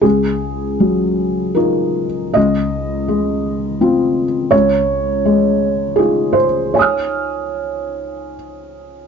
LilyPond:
<<
  \new Staff \with { instrumentName = "Felt piano" } { \time 3/4 \key des \major \tempo 4 = 79 << { r2. | r2. | r2. | <aes'' ees''' f'''>2. | } \\ { aes'2 bes'4 | ees''2. | des''2 aes'8 c''8 | des''2 r4 | } >> }
  \new Staff \with { instrumentName = "Felt piano" } { \time 3/4 \key des \major des,4 ges4 <ees' f'>4 | des,4 aes4 <c' f'>4 | des,4 aes4 <ees' f'>4~ | <ees' f'>2. | }
>>